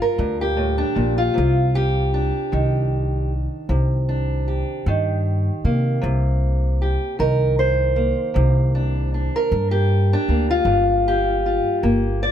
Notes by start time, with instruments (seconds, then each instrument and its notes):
Already playing: steel-string acoustic guitar G2 G3 F4
0.02 steel-string acoustic guitar A#4
0.18 upright bass D2, steel-string acoustic guitar G2
0.41 steel-string acoustic guitar G4
0.57 steel-string acoustic guitar A2
0.78 steel-string acoustic guitar D4
0.95 upright bass A#1, steel-string acoustic guitar A#2
1.18 steel-string acoustic guitar F4
1.34 upright bass C2, steel-string acoustic guitar C3
1.75 steel-string acoustic guitar G4
2.14 steel-string acoustic guitar D4
2.52 upright bass C2, steel-string acoustic guitar D#3
3.69 upright bass C2, steel-string acoustic guitar C3
4.09 steel-string acoustic guitar D4
4.48 steel-string acoustic guitar G4
4.86 upright bass G2, steel-string acoustic guitar D#3
5.64 upright bass C3, steel-string acoustic guitar A#3
6.02 upright bass C2, steel-string acoustic guitar C3
6.82 steel-string acoustic guitar G4
7.19 upright bass C2, steel-string acoustic guitar D#3 A#4
7.59 steel-string acoustic guitar C5
7.96 steel-string acoustic guitar A#3
8.34 upright bass C2, steel-string acoustic guitar C3
8.75 steel-string acoustic guitar D4
9.14 steel-string acoustic guitar D4
9.36 steel-string acoustic guitar A#4
9.52 upright bass G2
9.71 steel-string acoustic guitar G4
10.13 steel-string acoustic guitar D4
10.28 upright bass D2, steel-string acoustic guitar A#3
10.51 steel-string acoustic guitar F4
10.65 upright bass G1, steel-string acoustic guitar G2
11.08 steel-string acoustic guitar G4
11.46 steel-string acoustic guitar F4
11.83 upright bass G1, steel-string acoustic guitar A#3
12.23 steel-string acoustic guitar D5